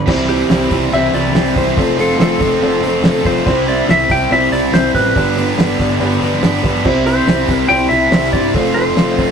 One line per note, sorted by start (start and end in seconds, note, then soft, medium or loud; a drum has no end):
0.07 0.41 C2 loud
0.07 0.48 C3 medium
0.07 0.49 E3 loud
0.07 0.30 G3 loud
0.07 0.24 C4 loud
0.07 0.30 C4 loud
0.07 0.25 E4 loud
0.07 0.28 E4 loud
0.07 0.25 G4 loud
0.07 0.27 G4 loud
0.07 0.25 C5 loud
0.07 kick loud
0.07 crash loud
0.07 cowbell loud
0.28 0.49 G3 medium
0.28 0.46 C4 medium
0.28 0.51 C4 medium
0.28 0.46 E4 medium
0.28 0.51 E4 medium
0.28 0.50 G4 medium
0.28 0.89 G4 medium
0.28 0.46 G4 medium
0.28 open hi-hat medium
0.49 0.67 C2 medium
0.49 0.92 C3 loud
0.49 0.92 E3 loud
0.49 0.72 G3 medium
0.49 0.67 C4 medium
0.49 0.72 C4 loud
0.49 0.67 E4 medium
0.49 0.70 E4 medium
0.49 0.67 G4 medium
0.49 0.70 G4 medium
0.49 0.68 C5 medium
0.49 snare loud
0.49 open hi-hat medium
0.49 cowbell medium
0.70 0.88 C2 medium
0.70 0.93 G3 medium
0.70 0.88 C4 medium
0.70 0.95 C4 medium
0.70 0.93 E4 medium
0.70 0.89 E4 medium
0.70 0.94 G4 medium
0.70 0.89 G4 medium
0.70 0.89 C5 medium
0.70 kick medium
0.70 open hi-hat medium
0.92 1.09 C2 medium
0.92 1.35 C3 loud
0.92 1.14 E3 medium
0.92 1.13 G3 medium
0.92 1.10 C4 loud
0.92 1.14 C4 medium
0.92 1.10 E4 medium
0.92 1.13 E4 loud
0.92 1.10 G4 medium
0.92 1.12 G4 medium
0.92 1.10 C5 loud
0.92 1.15 E5 loud
0.92 open hi-hat medium
0.92 cowbell loud
1.13 1.30 C2 medium
1.13 1.57 C3 medium
1.13 1.34 E3 medium
1.13 1.35 G3 medium
1.13 1.31 C4 medium
1.13 1.36 C4 medium
1.13 1.35 E4 medium
1.13 1.31 E4 medium
1.13 1.36 G4 medium
1.13 1.31 G4 medium
1.13 1.31 C5 medium
1.13 1.57 D5 medium
1.13 open hi-hat medium
1.25 snare soft
1.34 1.52 C2 medium
1.34 1.76 E3 medium
1.34 1.58 G3 medium
1.34 1.52 C4 medium
1.34 1.57 C4 medium
1.34 1.52 E4 medium
1.34 1.77 E4 medium
1.34 1.52 G4 medium
1.34 1.55 G4 medium
1.34 1.53 C5 medium
1.34 snare loud
1.34 open hi-hat medium
1.34 cowbell medium
1.56 1.79 C2 medium
1.56 1.77 G3 medium
1.56 1.73 C4 medium
1.56 1.79 C4 medium
1.56 1.73 E4 medium
1.56 1.73 G4 medium
1.56 1.76 G4 medium
1.56 1.73 C5 medium
1.56 1.96 C5 medium
1.56 kick loud
1.56 open hi-hat medium
1.68 snare soft
1.77 2.11 F1 loud
1.77 2.18 F3 medium
1.77 2.00 A3 medium
1.77 1.95 C4 medium
1.77 1.99 C4 loud
1.77 1.94 F4 medium
1.77 1.97 F4 loud
1.77 1.95 A4 medium
1.77 1.95 C5 loud
1.77 kick loud
1.77 open hi-hat medium
1.77 cowbell medium
1.98 2.19 A3 medium
1.98 2.15 C4 medium
1.98 2.21 C4 medium
1.98 2.15 F4 medium
1.98 2.21 F4 medium
1.98 2.15 A4 medium
1.98 2.20 A4 medium
1.98 2.16 C5 medium
1.98 open hi-hat medium
2.19 2.36 F1 medium
2.19 2.61 F3 medium
2.19 2.42 A3 loud
2.19 2.37 C4 medium
2.19 2.42 C4 loud
2.19 2.37 F4 medium
2.19 2.40 F4 loud
2.19 2.37 A4 medium
2.19 3.22 A4 medium
2.19 2.37 C5 medium
2.19 snare loud
2.19 open hi-hat medium
2.19 cowbell medium
2.39 2.58 F1 medium
2.39 2.62 A3 medium
2.39 2.57 C4 medium
2.39 2.62 C4 medium
2.39 2.57 F4 medium
2.39 2.63 F4 medium
2.39 2.57 A4 medium
2.39 2.57 C5 medium
2.39 kick medium
2.39 open hi-hat medium
2.62 2.79 F1 medium
2.62 2.85 F3 medium
2.62 2.84 A3 medium
2.62 2.79 C4 loud
2.62 2.83 C4 medium
2.62 2.79 F4 medium
2.62 2.83 F4 medium
2.62 2.79 A4 medium
2.62 2.79 C5 loud
2.62 open hi-hat medium
2.62 cowbell medium
2.83 3.00 F1 medium
2.83 3.02 F3 medium
2.83 3.04 A3 medium
2.83 3.00 C4 medium
2.83 3.04 C4 medium
2.83 3.00 F4 medium
2.83 3.05 F4 medium
2.83 3.00 A4 medium
2.83 3.00 C5 medium
2.83 open hi-hat medium
3.03 3.21 F1 loud
3.03 3.45 F3 medium
3.03 3.27 A3 medium
3.03 3.21 C4 medium
3.03 3.26 C4 medium
3.03 3.21 F4 medium
3.03 3.24 F4 medium
3.03 3.21 A4 medium
3.03 3.21 C5 loud
3.03 snare loud
3.03 open hi-hat medium
3.03 cowbell medium
3.24 3.48 F1 medium
3.24 3.46 A3 medium
3.24 3.42 C4 medium
3.24 3.46 C4 medium
3.24 3.42 F4 medium
3.24 3.45 F4 medium
3.24 3.42 A4 medium
3.24 3.42 C5 medium
3.24 3.65 C5 loud
3.24 kick medium
3.24 open hi-hat medium
3.36 snare soft
3.45 3.81 C2 loud
3.45 3.87 C3 medium
3.45 3.69 G3 medium
3.45 3.63 C4 medium
3.45 3.67 C4 loud
3.45 3.63 E4 medium
3.45 3.66 E4 loud
3.45 3.63 G4 medium
3.45 3.63 C5 loud
3.45 kick loud
3.45 open hi-hat medium
3.45 cowbell loud
3.67 3.88 G3 medium
3.67 3.84 C4 medium
3.67 3.88 C4 medium
3.67 3.89 E4 medium
3.67 3.85 E4 medium
3.67 3.85 G4 medium
3.67 3.85 C5 medium
3.67 3.90 D5 loud
3.67 open hi-hat medium
3.88 4.06 C2 medium
3.88 4.30 C3 loud
3.88 4.12 G3 loud
3.88 4.05 C4 medium
3.88 4.10 C4 loud
3.88 4.05 E4 medium
3.88 4.09 E4 loud
3.88 4.05 G4 medium
3.88 4.06 C5 medium
3.88 4.12 E5 loud
3.88 snare loud
3.88 open hi-hat medium
3.88 cowbell medium
4.09 4.27 C2 medium
4.09 4.32 G3 medium
4.09 4.27 C4 medium
4.09 4.32 C4 medium
4.09 4.27 E4 medium
4.09 4.33 E4 medium
4.09 4.27 G4 medium
4.09 4.27 C5 medium
4.09 4.33 G5 loud
4.09 kick medium
4.09 open hi-hat medium
4.30 4.48 C2 loud
4.30 4.53 C3 medium
4.30 4.53 G3 medium
4.30 4.48 C4 loud
4.30 4.52 C4 medium
4.30 4.48 E4 medium
4.30 4.51 E4 medium
4.30 4.48 G4 medium
4.30 4.48 C5 loud
4.30 4.52 E5 loud
4.30 open hi-hat medium
4.30 cowbell loud
4.51 4.69 C2 medium
4.51 4.73 C3 medium
4.51 4.75 G3 medium
4.51 4.69 C4 medium
4.51 4.75 C4 medium
4.51 4.69 E4 medium
4.51 4.76 E4 medium
4.51 4.69 G4 medium
4.51 4.69 C5 medium
4.51 4.74 D5 medium
4.51 open hi-hat medium
4.73 4.90 C2 medium
4.73 5.15 C3 medium
4.73 4.97 G3 medium
4.73 4.90 C4 medium
4.73 4.95 C4 medium
4.73 4.90 E4 medium
4.73 4.90 G4 medium
4.73 4.90 C5 medium
4.73 4.94 C5 medium
4.73 snare loud
4.73 open hi-hat loud
4.73 cowbell medium
4.77 4.93 E4 medium
4.95 5.12 A1 medium
4.95 5.17 G3 medium
4.95 5.12 C4 medium
4.95 5.16 C4 medium
4.95 5.15 E4 medium
4.95 5.12 E4 medium
4.95 5.12 G4 medium
4.95 5.54 B4 medium
4.95 5.12 C5 medium
4.95 kick medium
4.95 open hi-hat medium
5.06 snare soft
5.15 5.50 G1 loud
5.15 5.57 G2 medium
5.15 5.58 D3 loud
5.15 5.39 G3 loud
5.15 5.33 B3 medium
5.15 5.37 B3 medium
5.15 5.33 D4 medium
5.15 5.36 D4 loud
5.15 5.33 G4 medium
5.15 5.33 B4 loud
5.15 kick loud
5.15 open hi-hat medium
5.15 cowbell loud
5.36 5.60 G3 medium
5.36 5.54 B3 medium
5.36 5.60 B3 medium
5.36 5.54 D4 medium
5.36 5.60 D4 medium
5.36 5.54 G4 medium
5.36 5.54 B4 medium
5.36 open hi-hat medium
5.57 5.75 G1 medium
5.57 6.01 G2 medium
5.57 6.00 D3 loud
5.57 5.82 G3 loud
5.57 5.75 B3 loud
5.57 5.80 B3 loud
5.57 5.75 D4 medium
5.57 5.75 G4 medium
5.57 5.75 B4 loud
5.57 snare loud
5.57 open hi-hat medium
5.57 cowbell medium
5.61 5.78 D4 loud
5.78 5.97 G1 medium
5.78 6.01 G3 medium
5.78 5.96 B3 medium
5.78 6.02 B3 medium
5.78 5.96 D4 medium
5.78 6.03 D4 medium
5.78 5.96 G4 medium
5.78 5.97 D5 loud
5.78 kick medium
5.78 open hi-hat medium
6.00 6.17 G1 loud
6.00 6.43 G2 loud
6.00 6.22 D3 medium
6.00 6.21 G3 medium
6.00 6.17 B3 loud
6.00 6.21 B3 medium
6.00 6.17 D4 loud
6.00 6.20 D4 medium
6.00 6.17 G4 loud
6.00 6.17 B4 loud
6.00 open hi-hat medium
6.00 cowbell loud
6.21 6.39 G1 medium
6.21 6.65 G2 medium
6.21 6.42 D3 medium
6.21 6.43 G3 medium
6.21 6.39 B3 medium
6.21 6.43 B3 medium
6.21 6.44 D4 medium
6.21 6.39 D4 medium
6.21 6.39 G4 medium
6.21 6.39 B4 medium
6.21 open hi-hat medium
6.33 snare soft
6.42 6.60 G1 medium
6.42 6.84 D3 medium
6.42 6.65 G3 medium
6.42 6.60 B3 medium
6.42 6.64 B3 medium
6.42 6.60 D4 medium
6.42 6.62 D4 medium
6.42 6.60 G4 medium
6.42 6.60 B4 loud
6.42 snare loud
6.42 open hi-hat medium
6.42 cowbell medium
6.62 6.81 G1 medium
6.62 6.84 G3 medium
6.62 6.80 B3 medium
6.62 6.84 B3 medium
6.62 6.81 D4 medium
6.62 6.84 D4 medium
6.62 6.81 G4 medium
6.62 6.81 B4 loud
6.62 kick loud
6.62 open hi-hat medium
6.75 snare soft
6.84 7.20 C2 medium
6.84 7.25 C3 medium
6.84 7.07 G3 loud
6.84 7.02 C4 loud
6.84 7.06 C4 medium
6.84 7.02 E4 loud
6.84 7.04 E4 loud
6.84 7.02 G4 loud
6.84 7.02 C5 loud
6.84 kick loud
6.84 crash loud
6.84 cowbell loud
7.05 7.26 G3 medium
7.05 7.28 C4 medium
7.05 7.23 E4 medium
7.05 7.28 E4 medium
7.05 7.23 G4 medium
7.05 7.56 C5 loud
7.05 open hi-hat medium
7.26 7.45 C2 medium
7.26 7.68 C3 loud
7.26 7.50 G3 loud
7.26 7.44 C4 medium
7.26 7.49 C4 loud
7.26 7.44 E4 medium
7.26 7.47 E4 loud
7.26 7.44 G4 medium
7.26 7.44 C5 medium
7.26 snare loud
7.26 open hi-hat medium
7.26 cowbell medium
7.47 7.66 C2 medium
7.47 7.65 C4 medium
7.47 7.71 C4 medium
7.47 7.65 E4 medium
7.47 7.71 E4 medium
7.47 7.65 G4 medium
7.47 7.66 C5 medium
7.47 kick medium
7.47 open hi-hat medium
7.51 7.70 G3 medium
7.56 7.72 A#4 loud
7.68 7.87 C2 loud
7.68 7.92 C3 medium
7.68 7.91 G3 medium
7.68 7.86 C4 loud
7.68 7.91 C4 medium
7.68 7.87 E4 medium
7.68 7.90 E4 medium
7.68 7.86 G4 medium
7.68 7.87 C5 loud
7.68 7.89 G5 loud
7.68 open hi-hat medium
7.68 cowbell loud
7.89 8.08 C2 medium
7.89 8.12 G3 medium
7.89 8.07 C4 medium
7.89 8.14 C4 medium
7.89 8.08 E4 medium
7.89 8.13 E4 medium
7.89 8.08 G4 medium
7.89 8.32 E5 loud
7.89 open hi-hat medium
7.93 8.11 C3 medium
8.11 8.29 C2 loud
8.11 8.53 C3 medium
8.11 8.34 G3 medium
8.11 8.29 C4 medium
8.11 8.34 C4 medium
8.11 8.29 E4 medium
8.11 8.31 E4 medium
8.11 8.29 G4 medium
8.11 8.29 C5 medium
8.11 snare loud
8.11 open hi-hat loud
8.11 cowbell medium
8.33 8.51 G2 medium
8.33 8.54 G3 medium
8.33 8.50 C4 medium
8.33 8.55 C4 medium
8.33 8.53 E4 medium
8.33 8.51 E4 medium
8.33 8.51 G4 medium
8.33 8.51 C5 medium
8.33 8.53 D5 medium
8.33 kick medium
8.33 open hi-hat medium
8.54 8.89 F1 loud
8.54 8.96 F3 medium
8.54 8.76 A3 loud
8.54 8.72 C4 medium
8.54 8.76 C4 loud
8.54 8.72 F4 medium
8.54 8.74 F4 loud
8.54 8.72 A4 medium
8.54 8.72 C5 loud
8.54 kick loud
8.54 open hi-hat medium
8.54 cowbell loud
8.74 8.96 A3 medium
8.74 8.93 C4 medium
8.74 8.98 C4 medium
8.74 8.98 F4 medium
8.74 8.93 F4 medium
8.74 8.93 A4 medium
8.74 9.31 C5 medium
8.74 8.93 C5 medium
8.74 open hi-hat medium
8.96 9.14 F1 medium
8.96 9.31 F3 loud
8.96 9.19 A3 loud
8.96 9.14 C4 medium
8.96 9.19 C4 loud
8.96 9.15 F4 medium
8.96 9.17 F4 loud
8.96 9.15 A4 medium
8.96 9.15 C5 medium
8.96 snare loud
8.96 open hi-hat medium
8.96 cowbell medium
9.18 9.31 F1 medium
9.18 9.31 A3 medium
9.18 9.31 C4 medium
9.18 9.31 F4 medium
9.18 9.31 A4 medium
9.18 9.31 C5 medium
9.18 kick medium
9.18 open hi-hat medium